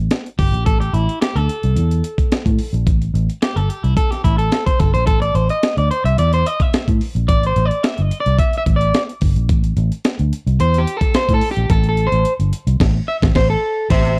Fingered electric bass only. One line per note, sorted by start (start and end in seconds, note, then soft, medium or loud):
0.39 0.52 G1 medium
0.52 0.66 A#1 medium
0.66 0.91 A1 medium
0.93 1.07 A1 loud
1.35 1.47 D2 medium
1.64 1.75 C2 medium
1.76 2.01 E2 loud
2.46 2.58 A2 medium
2.73 2.87 A#1 medium
2.87 3.11 A1 loud
3.14 3.27 A1 loud
3.56 3.68 G1 medium
3.84 3.96 C2 medium
4.24 4.49 A1 medium
4.80 4.93 G1 loud
4.94 5.07 A#1 medium
5.07 5.32 A1 medium
5.35 5.48 A1 loud
5.77 5.89 D2 loud
6.04 6.16 C2 medium
6.18 6.43 E2 medium
6.88 6.99 A2 medium
7.15 7.29 A#1 medium
7.29 7.53 A1 loud
7.56 7.69 A1 medium
7.99 8.10 G1 medium
8.26 8.38 C2 medium
8.66 8.91 A1 medium
9.22 9.35 G1 medium
9.36 9.49 A#1 medium
9.49 9.74 A1 loud
9.77 9.90 A1 loud
10.19 10.31 D2 medium
10.46 10.58 C2 loud
10.60 10.84 E2 loud
11.29 11.40 A2 medium
11.57 11.68 A#1 medium
11.70 12.07 A1 loud
12.12 12.24 A1 medium
12.39 12.51 G1 medium
12.67 12.79 C2 loud
12.80 12.99 A1 loud
13.22 13.33 A1 medium
13.35 13.54 A1 loud
13.90 14.20 A1 loud